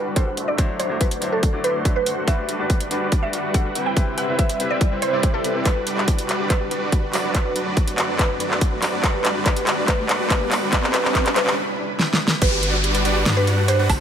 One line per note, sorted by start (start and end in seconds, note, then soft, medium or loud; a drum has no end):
0.00 3.92 D3 medium
0.00 0.13 G3 medium
0.00 0.24 G3 medium
0.00 0.36 G3 medium
0.00 0.14 D4 medium
0.00 0.24 D4 medium
0.00 0.14 F#4 medium
0.00 0.24 F#4 medium
0.00 3.93 F#4 medium
0.00 0.24 B4 medium
0.00 0.36 B4 medium
0.00 0.14 D5 medium
0.00 0.24 F#5 medium
0.15 0.26 G3 medium
0.15 0.27 D4 medium
0.15 0.27 F#4 medium
0.15 0.27 A4 medium
0.15 0.36 C5 medium
0.15 kick medium
0.15 closed hi-hat medium
0.27 0.36 G3 loud
0.27 0.36 D4 medium
0.27 0.36 F#4 medium
0.27 0.36 B4 medium
0.27 0.36 F#5 loud
0.37 2.26 F#2 medium
0.37 0.77 A3 medium
0.37 2.26 A3 medium
0.37 0.77 D4 medium
0.37 0.77 F#4 medium
0.37 0.77 C5 medium
0.37 2.26 C5 medium
0.37 0.77 E5 loud
0.37 closed hi-hat medium
0.48 0.68 D5 medium
0.58 0.87 F#3 medium
0.58 0.88 D4 medium
0.58 0.88 E4 medium
0.58 0.88 C5 loud
0.58 kick medium
0.58 closed hi-hat medium
0.79 1.19 A3 medium
0.79 1.19 D4 medium
0.79 1.19 F#4 medium
0.79 1.19 C5 medium
0.79 0.93 C5 medium
0.79 1.19 D5 medium
0.79 closed hi-hat medium
0.89 1.06 F#3 medium
0.89 1.07 D4 medium
0.89 1.07 E4 medium
0.89 1.07 C5 medium
1.01 1.21 B4 medium
1.01 kick medium
1.01 closed hi-hat medium
1.11 closed hi-hat medium
1.21 1.38 F#3 medium
1.21 1.51 A3 medium
1.21 1.38 D4 medium
1.21 1.51 D4 medium
1.21 1.39 E4 medium
1.21 1.51 F#4 medium
1.21 1.51 C5 medium
1.21 1.39 C5 medium
1.21 1.51 D5 medium
1.21 closed hi-hat medium
1.32 1.53 A4 medium
1.43 kick loud
1.43 closed hi-hat medium
1.53 1.82 F#3 medium
1.53 2.04 A3 medium
1.53 1.83 D4 medium
1.53 2.04 D4 medium
1.53 1.83 E4 medium
1.53 2.04 F#4 medium
1.53 2.04 C5 medium
1.53 2.04 D5 medium
1.53 1.83 D5 medium
1.64 1.84 B4 medium
1.64 closed hi-hat medium
1.84 1.95 F#3 medium
1.84 1.96 D4 medium
1.84 1.96 E4 medium
1.84 1.96 B4 medium
1.84 kick medium
1.84 closed hi-hat medium
1.96 2.16 B4 medium
2.06 2.25 A3 medium
2.06 2.25 D4 medium
2.06 2.25 F#4 medium
2.06 2.25 C5 medium
2.06 2.25 F#5 medium
2.06 closed hi-hat medium
2.27 2.56 G3 medium
2.27 7.09 G3 medium
2.27 2.46 G3 medium
2.27 2.57 D4 medium
2.27 2.46 D4 medium
2.27 2.46 F#4 medium
2.27 2.57 F#4 medium
2.27 7.09 B4 medium
2.27 2.57 B4 loud
2.27 2.48 E5 loud
2.27 kick loud
2.27 closed hi-hat medium
2.49 2.88 G3 medium
2.49 2.88 D4 medium
2.49 2.88 F#4 medium
2.49 2.88 B4 medium
2.49 2.88 D5 medium
2.49 closed hi-hat medium
2.59 2.75 G3 medium
2.59 2.76 D4 medium
2.59 2.76 F#4 medium
2.59 2.76 B4 medium
2.70 kick medium
2.70 closed hi-hat medium
2.80 closed hi-hat medium
2.90 3.07 G3 medium
2.90 3.10 G3 loud
2.90 3.07 D4 medium
2.90 3.10 D4 medium
2.90 3.10 F#4 medium
2.90 3.08 F#4 medium
2.90 3.10 B4 medium
2.90 3.08 B4 medium
2.90 3.10 D5 loud
2.90 closed hi-hat medium
3.12 3.31 G3 medium
3.12 3.31 D4 medium
3.12 3.31 B4 medium
3.12 3.31 D5 medium
3.12 kick loud
3.12 closed hi-hat medium
3.22 3.51 G3 medium
3.22 3.52 D4 medium
3.22 3.52 F#4 medium
3.22 3.52 D5 medium
3.22 3.43 E5 medium
3.33 3.63 G3 medium
3.33 3.63 D4 medium
3.33 3.63 F#4 medium
3.33 3.63 B4 medium
3.33 3.63 F#5 medium
3.33 closed hi-hat medium
3.53 3.64 G3 medium
3.53 3.65 D4 medium
3.53 3.65 F#4 medium
3.53 3.65 A4 medium
3.53 3.74 F#5 medium
3.53 kick medium
3.53 closed hi-hat medium
3.65 3.74 G3 loud
3.65 3.74 D4 medium
3.65 3.74 F#4 medium
3.65 3.74 B4 medium
3.65 3.74 F#5 loud
3.75 4.15 G3 medium
3.75 4.15 C4 medium
3.75 4.15 E4 medium
3.75 4.15 B4 medium
3.75 4.15 G5 loud
3.75 closed hi-hat medium
3.86 4.06 G5 medium
3.96 4.25 C3 medium
3.96 5.64 C3 medium
3.96 4.26 C4 medium
3.96 5.64 E4 medium
3.96 4.26 E4 medium
3.96 4.26 B4 loud
3.96 kick loud
3.96 closed hi-hat medium
4.18 4.58 G3 medium
4.18 4.58 C4 medium
4.18 4.58 E4 medium
4.18 4.58 B4 medium
4.18 4.58 E5 medium
4.18 4.31 F#5 medium
4.18 closed hi-hat medium
4.27 4.44 C3 medium
4.27 4.45 C4 medium
4.27 4.45 E4 medium
4.27 4.45 B4 medium
4.39 4.59 E5 medium
4.39 kick medium
4.39 closed hi-hat medium
4.49 closed hi-hat medium
4.59 4.76 C3 medium
4.59 4.89 G3 medium
4.59 4.76 C4 medium
4.59 4.89 C4 medium
4.59 4.89 E4 medium
4.59 4.77 E4 medium
4.59 4.89 B4 medium
4.59 4.77 B4 medium
4.59 4.89 E5 medium
4.59 closed hi-hat medium
4.70 4.91 D5 medium
4.81 kick loud
4.81 closed hi-hat medium
4.91 5.10 C3 medium
4.91 5.11 G3 medium
4.91 5.11 C4 medium
4.91 5.11 E4 medium
4.91 5.11 B4 medium
4.91 5.11 C5 medium
4.91 5.11 E5 loud
5.02 5.22 C5 medium
5.02 closed hi-hat medium
5.12 5.31 C3 medium
5.12 5.31 G3 loud
5.12 5.31 C4 medium
5.12 5.32 C4 medium
5.12 5.31 E4 medium
5.12 5.32 E4 medium
5.12 5.32 B4 medium
5.12 5.32 C5 medium
5.12 5.32 D5 loud
5.23 kick medium
5.23 closed hi-hat medium
5.33 5.42 C3 medium
5.33 5.63 G3 medium
5.33 5.43 C4 medium
5.33 5.63 C4 medium
5.33 5.63 E4 medium
5.33 5.43 E4 medium
5.33 5.54 A4 medium
5.33 5.43 A4 loud
5.33 5.63 B4 medium
5.33 5.63 D5 medium
5.43 5.53 C3 medium
5.43 5.53 C4 medium
5.43 5.54 E4 medium
5.43 5.54 B4 medium
5.43 closed hi-hat medium
5.54 5.64 C3 medium
5.54 5.64 C4 medium
5.54 5.64 E4 medium
5.54 5.65 A4 medium
5.65 7.12 D3 medium
5.65 5.84 G3 medium
5.65 5.84 D4 medium
5.65 7.12 F#4 medium
5.65 5.71 F#4 medium
5.65 5.84 F#4 medium
5.65 5.86 B4 medium
5.65 5.84 B4 medium
5.65 5.84 D5 medium
5.65 kick medium
5.65 clap soft
5.65 closed hi-hat medium
5.65 riser medium
5.76 5.84 G4 medium
5.87 6.26 G3 medium
5.87 6.27 D4 medium
5.87 6.27 F#4 medium
5.87 5.92 B4 medium
5.87 6.27 B4 medium
5.87 6.27 D5 medium
5.87 closed hi-hat medium
5.97 6.05 F#4 medium
5.97 clap soft
6.08 6.13 G4 medium
6.08 kick loud
6.08 closed hi-hat medium
6.18 6.24 B4 medium
6.18 closed hi-hat medium
6.29 6.48 G3 medium
6.29 6.48 D4 medium
6.29 6.37 F#4 loud
6.29 6.48 F#4 medium
6.29 6.48 B4 medium
6.29 6.48 D5 loud
6.29 clap medium
6.29 closed hi-hat medium
6.40 6.43 G4 medium
6.50 6.69 G3 medium
6.50 6.69 D4 medium
6.50 6.55 F#4 medium
6.50 6.69 F#4 medium
6.50 6.70 B4 medium
6.50 6.69 B4 medium
6.50 6.69 D5 medium
6.50 kick loud
6.50 clap medium
6.50 closed hi-hat medium
6.61 6.68 G4 medium
6.71 7.11 G3 medium
6.71 7.11 D4 medium
6.71 7.11 F#4 medium
6.71 7.11 B4 medium
6.71 6.76 B4 medium
6.71 7.11 D5 medium
6.71 closed hi-hat medium
6.82 6.90 F#4 medium
6.92 6.98 G4 medium
6.92 kick loud
6.92 closed hi-hat medium
7.03 7.08 B4 medium
7.13 9.02 F#2 medium
7.13 10.69 D3 medium
7.13 7.32 F#3 medium
7.13 9.02 A3 medium
7.13 9.02 C4 medium
7.13 7.32 D4 medium
7.13 10.69 F#4 medium
7.13 7.32 F#4 medium
7.13 7.21 F#4 loud
7.13 7.32 B4 medium
7.13 7.32 D5 loud
7.13 clap medium
7.13 open hi-hat medium
7.24 7.27 F#4 medium
7.34 7.53 F#3 medium
7.34 7.53 D4 medium
7.34 7.53 F#4 medium
7.34 7.40 F#4 medium
7.34 7.53 B4 medium
7.34 7.55 B4 medium
7.34 7.53 D5 medium
7.34 kick loud
7.34 clap medium
7.34 closed hi-hat medium
7.45 7.53 F#4 loud
7.56 7.95 F#3 medium
7.56 7.95 D4 medium
7.56 7.95 F#4 medium
7.56 7.95 B4 medium
7.56 7.61 B4 medium
7.56 7.95 D5 medium
7.56 closed hi-hat medium
7.66 7.74 F#4 medium
7.77 7.82 F#4 medium
7.77 kick loud
7.77 closed hi-hat medium
7.88 7.93 B4 medium
7.88 closed hi-hat medium
7.98 8.17 F#3 medium
7.98 8.17 D4 medium
7.98 8.17 F#4 medium
7.98 8.06 F#4 loud
7.98 8.17 B4 medium
7.98 8.17 D5 loud
7.98 clap medium
7.98 closed hi-hat medium
8.09 8.12 F#4 medium
8.19 8.38 F#3 medium
8.19 8.24 F#4 medium
8.19 8.39 B4 medium
8.19 kick loud
8.19 clap medium
8.19 closed hi-hat medium
8.30 8.37 F#4 loud
8.40 8.80 F#3 medium
8.40 8.80 D4 medium
8.40 8.80 F#4 medium
8.40 8.80 B4 medium
8.40 8.46 B4 medium
8.40 8.80 D5 medium
8.40 closed hi-hat medium
8.51 8.59 F#4 medium
8.51 clap medium
8.61 8.67 F#4 medium
8.61 kick medium
8.61 closed hi-hat medium
8.72 8.77 B4 medium
8.82 9.01 F#3 medium
8.82 9.01 D4 medium
8.82 9.01 F#4 medium
8.82 8.90 F#4 loud
8.82 9.01 B4 medium
8.82 9.01 D5 loud
8.82 clap medium
8.82 open hi-hat medium
8.93 8.96 F#4 medium
9.03 12.38 G3 medium
9.03 9.22 G3 medium
9.03 9.22 F#4 medium
9.03 9.09 F#4 medium
9.03 10.71 B4 medium
9.03 9.22 B4 medium
9.03 9.24 B4 medium
9.03 kick loud
9.03 clap medium
9.03 closed hi-hat medium
9.14 9.22 G4 loud
9.24 9.44 G3 medium
9.24 9.44 D4 medium
9.24 9.44 F#4 medium
9.24 9.44 B4 medium
9.24 9.30 B4 medium
9.24 9.44 D5 loud
9.24 clap medium
9.24 closed hi-hat medium
9.35 9.43 F#4 medium
9.46 9.65 G3 medium
9.46 9.64 D4 medium
9.46 9.64 F#4 medium
9.46 9.64 B4 medium
9.46 9.66 B4 loud
9.46 9.64 D5 medium
9.46 kick loud
9.46 clap medium
9.46 closed hi-hat medium
9.56 9.64 G4 loud
9.56 closed hi-hat medium
9.67 9.86 G3 medium
9.67 9.86 D4 medium
9.67 9.86 F#4 medium
9.67 9.86 B4 medium
9.67 9.72 B4 medium
9.67 9.86 D5 medium
9.67 clap medium
9.67 closed hi-hat medium
9.78 9.85 F#4 medium
9.88 10.07 G3 medium
9.88 10.07 D4 medium
9.88 10.07 F#4 medium
9.88 10.07 B4 medium
9.88 10.08 B4 loud
9.88 10.07 D5 medium
9.88 kick loud
9.88 clap medium
9.88 closed hi-hat medium
9.99 10.06 G4 loud
10.09 10.29 G3 medium
10.09 10.29 D4 medium
10.09 10.29 F#4 medium
10.09 10.29 B4 medium
10.09 10.14 B4 medium
10.09 10.29 D5 loud
10.09 clap medium
10.09 closed hi-hat medium
10.20 10.28 F#4 medium
10.30 10.49 D4 medium
10.30 10.36 F#4 medium
10.30 10.50 B4 loud
10.30 kick loud
10.30 clap medium
10.30 closed hi-hat medium
10.41 10.49 G4 loud
10.51 10.71 G3 medium
10.51 10.71 D4 medium
10.51 10.71 F#4 medium
10.51 10.71 B4 medium
10.51 10.57 B4 medium
10.51 10.71 D5 loud
10.51 clap medium
10.51 open hi-hat medium
10.62 10.70 F#4 medium
10.72 12.40 C3 medium
10.72 10.91 G3 medium
10.72 10.91 D4 medium
10.72 12.40 E4 medium
10.72 10.78 F#4 medium
10.72 12.40 B4 medium
10.72 10.92 B4 loud
10.72 10.91 D5 loud
10.72 kick loud
10.72 clap medium
10.72 closed hi-hat medium
10.83 10.91 G4 loud
10.83 clap medium
10.94 11.12 G3 medium
10.94 11.12 D4 medium
10.94 10.99 F#4 medium
10.94 11.12 F#4 medium
10.94 11.13 B4 loud
10.94 11.12 B4 medium
10.94 11.12 D5 loud
10.94 clap medium
10.94 closed hi-hat medium
11.05 11.12 G4 loud
11.05 clap medium
11.15 11.34 G3 medium
11.15 11.34 F#4 medium
11.15 11.20 F#4 medium
11.15 11.34 B4 medium
11.15 11.34 B4 loud
11.15 11.34 D5 medium
11.15 kick loud
11.15 clap loud
11.15 closed hi-hat medium
11.26 11.33 G4 loud
11.26 clap medium
11.26 closed hi-hat medium
11.36 11.55 G3 medium
11.36 11.55 D4 medium
11.36 11.55 F#4 medium
11.36 11.41 F#4 medium
11.36 11.55 B4 loud
11.36 11.55 B4 medium
11.36 11.55 D5 medium
11.36 clap loud
11.36 closed hi-hat medium
11.47 11.54 G4 loud
11.47 clap medium
11.99 snare medium
12.13 snare medium
12.28 snare medium
12.42 13.25 G1 loud
12.42 12.60 G3 medium
12.42 12.60 D4 medium
12.42 12.60 F#4 medium
12.42 12.47 F#4 medium
12.42 12.60 B4 medium
12.42 12.62 B4 loud
12.42 12.60 D5 medium
12.42 kick loud
12.42 closed hi-hat medium
12.42 crash loud
12.42 downlifter medium
12.52 12.60 G4 loud
12.63 13.03 G3 medium
12.63 13.03 D4 medium
12.63 13.03 F#4 medium
12.63 13.03 B4 medium
12.63 12.68 B4 medium
12.63 13.03 D5 loud
12.63 closed hi-hat medium
12.74 12.81 F#4 medium
12.84 12.89 G4 medium
12.84 closed hi-hat medium
12.95 13.00 B4 medium
12.95 closed hi-hat medium
13.05 13.24 G3 loud
13.05 13.24 D4 medium
13.05 13.13 F#4 loud
13.05 13.24 F#4 medium
13.05 13.24 B4 medium
13.05 13.24 D5 loud
13.05 closed hi-hat medium
13.16 13.19 G4 medium
13.26 13.88 G2 medium
13.26 13.45 G3 medium
13.26 13.45 D4 medium
13.26 13.31 F#4 medium
13.26 13.45 F#4 medium
13.26 13.45 B4 medium
13.26 13.45 D5 loud
13.26 snare loud
13.26 closed hi-hat medium
13.37 13.45 G4 loud
13.37 13.57 B4 medium
13.47 13.77 G3 medium
13.47 13.77 D4 medium
13.47 13.77 F#4 medium
13.47 13.53 B4 medium
13.47 13.77 B4 medium
13.47 13.77 F#5 medium
13.47 closed hi-hat medium
13.58 13.66 F#4 medium
13.68 13.74 G4 medium
13.68 13.88 C5 medium
13.68 closed hi-hat medium
13.79 13.88 G3 loud
13.79 13.88 D4 medium
13.79 13.88 F#4 medium
13.79 13.84 B4 medium
13.79 13.88 B4 medium
13.79 13.88 F#5 loud
13.89 14.00 F#1 loud
13.89 14.00 A3 medium
13.89 14.00 D4 medium
13.89 13.97 F#4 loud
13.89 14.00 F#4 medium
13.89 14.00 C5 medium
13.89 14.00 E5 loud
13.89 kick medium
13.89 open hi-hat loud
13.89 high woodblock medium